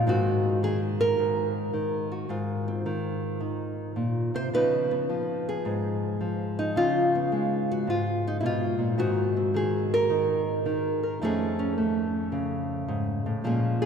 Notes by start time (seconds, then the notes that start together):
0.07 G#2 D#3 C4 D#4 F#4
0.63 D#3 G#4
1.01 A#4
1.19 G#2
1.73 D#3
2.12 F#4
2.29 G#2 F4
2.68 C4
2.86 D#3
3.40 D#3
3.96 A#2
4.34 C3 C5
4.53 C#3 F3 B3 D#4 B4
4.91 B3
5.09 F3
5.49 G#4
5.65 G#2
6.21 F3
6.59 D#4
6.76 C#3 F4
7.15 B3
7.32 G#3
7.71 F#4
7.87 G#2 F4
8.27 D#4
8.41 B2 E4
8.46 F4
8.79 A#2
8.98 G#2 D#3 C4 F#4
9.37 C4
9.54 D#3 G#4
9.94 A#4
10.10 D#3
10.66 D#3
11.03 A#4
11.22 F2 A3 C#4 D#4 G#4
11.59 C#4
11.78 A3
12.32 C#3
12.88 G#2
13.26 A2
13.44 A#2 F3 G#3 C#4 G#4
13.82 G#4